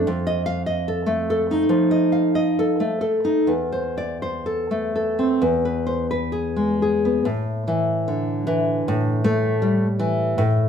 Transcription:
0.07 F2
0.27 D#5
0.46 F5
0.66 D#5
0.88 A4
1.06 A3
1.30 A4
1.51 D#4
1.69 F3
1.91 D#5
2.12 F5
2.35 D#5
2.59 A4
2.80 A3
3.01 A4
3.25 D#4
3.47 E2
3.72 C5
3.98 D5
4.22 C5
4.46 A4
4.71 A3
4.96 A4
5.19 C4
5.42 E2
5.65 B4
5.87 C5
6.11 B4
6.32 G#4
6.56 G#3
6.82 G#4
7.05 B3
7.25 A2
7.68 E3
8.08 D3
8.47 E3
8.88 A2
9.24 A3
9.62 G3
9.99 E3
10.38 A2

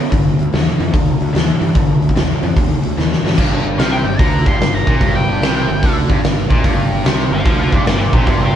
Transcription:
Already playing: D3
0.00 B3
0.10 G1 G2 D3, kick, open hi-hat
0.39 D2, open hi-hat
0.52 D#2 G2 E3, snare, open hi-hat
0.68 snare
0.80 F2 G2 E3, open hi-hat
0.93 D#2 G2 D3, kick, open hi-hat
1.21 D2, open hi-hat
1.33 D#2 G2 E3, snare, open hi-hat
1.60 G2 E3, open hi-hat
1.75 G1 G2 D3, kick, open hi-hat
2.02 D2, open hi-hat
2.09 kick
2.15 D#2 G2 E3, snare, open hi-hat
2.42 F2 G2 E3, open hi-hat
2.56 D#2 G2 D3, kick, open hi-hat
2.83 D2, open hi-hat
2.97 D#2 G2 E3, snare
3.13 snare
3.23 G2 E3, snare
3.33 D4 A#4, snare
3.38 G1 G2 G4, kick, crash
3.66 D4 G4 A4
3.78 C2 C3 D4 G4 A#4 F5, snare, open hi-hat
3.92 G5
4.04 G1 G2 D4 G4 A#4
4.18 D2 D3 D4 G4 C5 A#5, kick, open hi-hat
4.46 G1 G2 D4 G4 A#4 C6, kick
4.59 G1 G2 D4 G4 C5, snare, open hi-hat
4.75 A#5
4.85 A#1 A#2 D4 G4 A#4, kick
4.99 G1 G2 D4 G4 C5, kick, open hi-hat
5.15 G5
5.27 D4 G4 C5
5.42 C2 C3 D4 G4 A#4, snare, open hi-hat
5.69 G1 G2 D4 G4 A#4
5.82 D2 D3 D4 G4 A4, kick, open hi-hat
6.09 G1 G2 D4 G4 A4, kick
6.23 G1 G2 D4 G4 A#4, snare, open hi-hat
6.50 A#1 A#2 D4 G4 A#4, kick
6.64 G1 G2 D4 G4 A#4, kick, open hi-hat
6.92 D4 G4 A#4
7.04 C2 C3 D4 G4 A#4, snare, open hi-hat
7.32 G1 G2 D4 G4 A#4 C5 F5
7.45 D2 D3 D4 G4 A4 C5 F5, kick, open hi-hat
7.60 C5 F5
7.72 G1 G2 D4 G4 A4 A#4 D5, kick
7.84 G1 G2 D4 G4 A#4 C5 D5, snare, open hi-hat
7.99 A#4 D5
8.11 A#1 A#2 D4 G4 A#4 C5, kick
8.26 G1 G2 D4 G4 A#4 C5, kick, open hi-hat
8.40 G4 C5
8.52 A#4

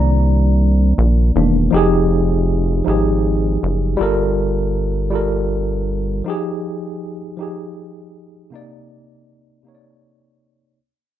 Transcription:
Already playing: C2 D#3 A#3 D4 D5 A#5
0.98 A#1
1.36 E1 D#3 A#3 D4
1.71 F1 F3 D#4 G4
1.76 G#4
2.84 G#1 F3 D#4 G4
2.90 G#4
3.63 F#1
3.97 G1 G3 F4 A4
4.02 A#4
5.10 G3 F4 A4
5.15 A#4
6.24 F3 D#4 G4
6.30 G#4
7.37 F3 D#4 G4
7.42 G#4
8.50 C3 A#3 D#4
8.55 D5
9.63 C3 A#3 D#4
9.68 C#5
9.75 D5

